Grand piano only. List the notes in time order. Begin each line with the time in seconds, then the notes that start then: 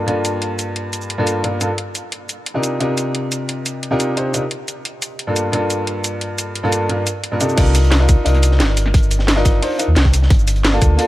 0.06 G2 A#3 D4 F4 A4
1.18 G2 A#3 D4 F4 A4
1.43 G2 A#3 D4 F4 A#4
1.60 G2 A#3 D4 F4 A4
2.54 C3 D4 D#4 F4 G4 A#4
2.79 C3 D4 D#4 F4 G4 A#4
3.91 C3 D4 D#4 F4 G4 A#4
4.16 C3 D4 D#4 F4 G4 C5
4.33 C3 D4 D#4 F4 G4 A#4
5.27 G2 A#3 D4 F4 A4
5.52 G2 A#3 D4 F4 A4
6.63 G2 A#3 D4 F4 A4
6.89 G2 A#3 D4 F4 A#4
7.32 G2 A#3 D4 F4 A#4
7.40 C3 D4 D#4 F4 G4 A4
7.56 D4 D#4 F4 A#4
8.00 D4 D#4 F4 A#4
8.24 D4 D#4 F4 A#4
9.36 D4 D#4 F4 A#4
9.62 D4 D#4 F4 C5
9.78 D4 D#4 F4 A#4
10.72 A#3 D4 F4 A4
10.97 A#3 D4 F4 A4